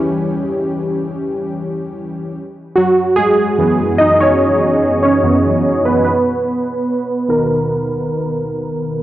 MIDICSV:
0, 0, Header, 1, 2, 480
1, 0, Start_track
1, 0, Key_signature, 5, "major"
1, 0, Tempo, 821918
1, 1614, Time_signature, 4, 2, 24, 8
1, 5272, End_track
2, 0, Start_track
2, 0, Title_t, "Synth keys"
2, 0, Program_c, 0, 88
2, 0, Control_c, 0, 64, 127
2, 0, Note_on_c, 0, 52, 49
2, 0, Note_on_c, 0, 55, 47
2, 0, Note_on_c, 0, 61, 56
2, 0, Note_on_c, 0, 67, 77
2, 516, Note_off_c, 0, 67, 0
2, 1349, Note_off_c, 0, 52, 0
2, 1350, Note_off_c, 0, 55, 0
2, 1353, Note_off_c, 0, 61, 0
2, 1382, Control_c, 0, 64, 0
2, 1493, Control_c, 0, 64, 127
2, 1609, Note_on_c, 0, 66, 92
2, 1622, Note_on_c, 0, 54, 70
2, 1841, Note_off_c, 0, 54, 0
2, 1845, Note_on_c, 0, 68, 87
2, 1859, Note_off_c, 0, 66, 0
2, 1859, Note_on_c, 0, 56, 64
2, 2092, Note_on_c, 0, 42, 56
2, 2095, Note_on_c, 0, 52, 51
2, 2099, Note_on_c, 0, 59, 61
2, 2313, Note_off_c, 0, 56, 0
2, 2327, Note_on_c, 0, 75, 97
2, 2340, Note_on_c, 0, 63, 79
2, 2344, Note_off_c, 0, 68, 0
2, 2451, Note_off_c, 0, 75, 0
2, 2456, Note_on_c, 0, 73, 93
2, 2458, Note_off_c, 0, 63, 0
2, 2470, Note_on_c, 0, 61, 77
2, 2923, Note_off_c, 0, 61, 0
2, 2929, Note_off_c, 0, 73, 0
2, 2936, Note_on_c, 0, 73, 88
2, 2949, Note_on_c, 0, 61, 76
2, 3048, Note_off_c, 0, 42, 0
2, 3050, Note_off_c, 0, 52, 0
2, 3052, Note_off_c, 0, 59, 0
2, 3055, Note_on_c, 0, 42, 49
2, 3057, Note_on_c, 0, 52, 45
2, 3059, Note_on_c, 0, 59, 49
2, 3271, Note_off_c, 0, 42, 0
2, 3272, Note_off_c, 0, 52, 0
2, 3273, Note_off_c, 0, 59, 0
2, 3403, Note_off_c, 0, 61, 0
2, 3418, Note_on_c, 0, 71, 82
2, 3431, Note_on_c, 0, 59, 60
2, 3434, Note_off_c, 0, 73, 0
2, 3523, Note_off_c, 0, 71, 0
2, 3530, Note_off_c, 0, 59, 0
2, 3530, Note_on_c, 0, 71, 83
2, 3542, Note_on_c, 0, 59, 62
2, 3543, Control_c, 0, 64, 0
2, 3638, Control_c, 0, 64, 127
2, 4255, Note_on_c, 0, 47, 51
2, 4259, Note_on_c, 0, 51, 45
2, 4263, Note_on_c, 0, 70, 60
2, 4949, Note_off_c, 0, 71, 0
2, 4951, Note_off_c, 0, 47, 0
2, 4953, Note_off_c, 0, 51, 0
2, 4954, Note_off_c, 0, 59, 0
2, 4955, Note_off_c, 0, 70, 0
2, 5272, End_track
0, 0, End_of_file